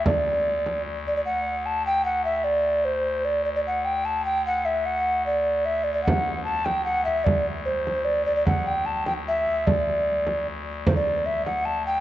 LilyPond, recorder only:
\new Staff \with { instrumentName = "Recorder" } { \time 3/4 \key d \mixolydian \tempo 4 = 150 d''2 r8 d''16 d''16 | fis''4 a''8 g''8 fis''8 e''8 | d''4 c''4 d''8 d''16 d''16 | fis''8 g''8 a''8 g''8 fis''8 e''8 |
fis''4 d''4 e''8 d''16 d''16 | fis''4 a''8 g''8 fis''8 e''8 | d''8 r8 c''4 d''8 d''16 d''16 | fis''8 g''8 a''8 g''8 e''4 |
d''2 r4 | c''16 d''8. e''8 fis''8 a''8 g''8 | }